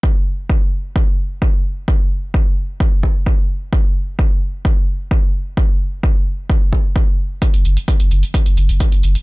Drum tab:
HH |----------------|----------------|----------------|----------------|
BD |o---o---o---o---|o---o---o-o-o---|o---o---o---o---|o---o---o-o-o---|

HH |xxxxxxxxxxxxxxxx|
BD |o---o---o---o---|